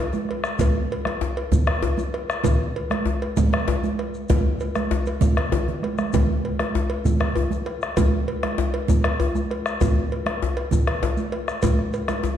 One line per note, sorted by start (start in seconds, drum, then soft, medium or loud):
0.13 djembe tone medium
0.13 high conga medium
0.13 shekere soft
0.29 bombo rim soft
0.29 cowbell soft
0.29 djembe slap soft
0.44 bombo rim medium
0.44 shekere soft
0.59 bombo low loud
0.59 cowbell medium
0.59 djembe slap medium
0.59 djembe tone medium
0.59 high conga medium
0.59 djembe bass medium
0.59 low conga medium
0.59 shekere medium
0.92 cowbell soft
1.05 bombo rim medium
1.05 cowbell soft
1.05 djembe tone medium
1.05 high conga medium
1.21 bombo rim soft
1.21 djembe slap medium
1.21 djembe bass medium
1.37 cowbell soft
1.52 bombo low loud
1.52 djembe tone medium
1.52 high conga medium
1.52 low conga medium
1.52 shekere medium
1.67 bombo rim medium
1.67 cowbell soft
1.82 cowbell soft
1.82 djembe slap medium
1.82 high conga soft
1.82 djembe bass medium
1.97 high conga medium
1.97 djembe tone medium
1.97 shekere soft
2.13 bombo rim soft
2.13 cowbell soft
2.13 djembe slap soft
2.30 bombo rim medium
2.30 shekere soft
2.44 bombo low medium
2.44 cowbell medium
2.44 djembe slap medium
2.44 high conga medium
2.44 djembe tone medium
2.44 low conga medium
2.44 djembe bass medium
2.44 shekere medium
2.76 cowbell soft
2.90 bombo rim medium
2.90 cowbell soft
2.90 djembe tone medium
2.90 high conga medium
3.06 bombo rim soft
3.06 djembe slap medium
3.06 djembe bass medium
3.22 cowbell soft
3.37 bombo low loud
3.37 djembe tone medium
3.37 high conga medium
3.37 low conga medium
3.37 shekere medium
3.53 bombo rim medium
3.53 cowbell soft
3.67 cowbell soft
3.67 djembe slap medium
3.67 high conga soft
3.67 djembe bass medium
3.83 high conga medium
3.83 djembe tone medium
3.83 shekere soft
3.99 bombo rim soft
3.99 cowbell soft
3.99 djembe slap soft
4.14 shekere soft
4.29 bombo low loud
4.29 cowbell medium
4.29 djembe slap medium
4.29 high conga medium
4.29 djembe tone medium
4.29 low conga medium
4.29 djembe bass medium
4.29 shekere medium
4.44 djembe slap soft
4.44 high conga soft
4.60 cowbell soft
4.60 djembe slap soft
4.60 high conga soft
4.60 shekere soft
4.75 bombo rim medium
4.75 cowbell soft
4.75 high conga medium
4.75 djembe tone medium
4.75 shekere soft
4.91 bombo rim soft
4.91 djembe slap medium
4.91 djembe bass medium
5.06 cowbell soft
5.06 high conga soft
5.06 shekere soft
5.21 bombo rim soft
5.21 bombo low loud
5.21 high conga medium
5.21 djembe tone medium
5.21 low conga medium
5.21 shekere medium
5.37 bombo rim medium
5.37 cowbell soft
5.37 high conga soft
5.52 cowbell soft
5.52 djembe slap medium
5.52 low conga soft
5.52 djembe bass medium
5.68 djembe slap soft
5.68 djembe tone medium
5.68 low conga soft
5.82 bombo rim soft
5.82 cowbell soft
5.82 high conga soft
5.98 bombo rim medium
5.98 high conga medium
5.98 shekere soft
6.13 bombo low loud
6.13 cowbell medium
6.13 djembe slap medium
6.13 djembe tone medium
6.13 high conga medium
6.13 djembe bass medium
6.13 low conga medium
6.13 shekere medium
6.45 cowbell soft
6.59 bombo rim medium
6.59 cowbell soft
6.59 high conga medium
6.59 djembe tone medium
6.74 bombo rim soft
6.74 djembe slap medium
6.74 djembe bass medium
6.90 cowbell soft
7.05 bombo low loud
7.05 high conga medium
7.05 djembe tone medium
7.05 low conga medium
7.05 shekere medium
7.20 bombo rim medium
7.20 cowbell soft
7.35 cowbell soft
7.35 high conga soft
7.35 djembe bass medium
7.51 high conga soft
7.51 djembe tone medium
7.51 shekere soft
7.66 bombo rim soft
7.66 cowbell soft
7.66 djembe slap soft
7.82 bombo rim medium
7.82 shekere soft
7.97 bombo low medium
7.97 cowbell medium
7.97 djembe slap medium
7.97 djembe tone medium
7.97 high conga medium
7.97 djembe bass medium
7.97 low conga medium
7.97 shekere medium
8.28 cowbell soft
8.43 bombo rim medium
8.43 cowbell medium
8.43 high conga soft
8.43 djembe tone medium
8.58 bombo rim soft
8.58 djembe slap medium
8.58 djembe bass medium
8.74 cowbell soft
8.88 bombo low loud
8.88 high conga medium
8.88 djembe tone medium
8.88 low conga medium
8.88 shekere medium
9.04 bombo rim medium
9.04 cowbell soft
9.19 cowbell soft
9.19 high conga soft
9.19 djembe bass medium
9.35 high conga soft
9.35 djembe tone medium
9.35 shekere soft
9.51 bombo rim soft
9.51 cowbell soft
9.51 djembe slap soft
9.66 bombo rim medium
9.66 shekere soft
9.81 bombo low loud
9.81 cowbell medium
9.81 djembe slap medium
9.81 djembe tone medium
9.81 high conga medium
9.81 djembe bass medium
9.81 low conga medium
9.81 shekere medium
10.12 cowbell soft
10.26 bombo rim medium
10.26 cowbell soft
10.26 high conga soft
10.26 djembe tone medium
10.42 bombo rim soft
10.42 djembe slap medium
10.42 djembe bass medium
10.57 cowbell soft
10.71 bombo low loud
10.71 high conga medium
10.71 djembe tone medium
10.71 low conga medium
10.71 shekere medium
10.87 bombo rim medium
10.87 cowbell soft
11.02 cowbell soft
11.02 djembe slap medium
11.02 high conga soft
11.02 djembe bass medium
11.17 high conga soft
11.17 djembe tone medium
11.17 shekere soft
11.32 bombo rim soft
11.32 cowbell soft
11.32 djembe slap soft
11.48 bombo rim medium
11.48 shekere soft
11.62 bombo low medium
11.62 cowbell medium
11.62 djembe slap medium
11.62 high conga medium
11.62 djembe tone medium
11.62 low conga medium
11.62 djembe bass medium
11.62 shekere medium
11.79 bombo rim soft
11.79 djembe slap soft
11.93 cowbell soft
11.93 djembe slap soft
11.93 shekere soft
12.08 bombo rim medium
12.08 cowbell soft
12.08 djembe slap soft
12.08 high conga soft
12.08 djembe tone medium
12.08 shekere soft
12.23 djembe slap medium
12.23 djembe bass medium
12.23 shekere soft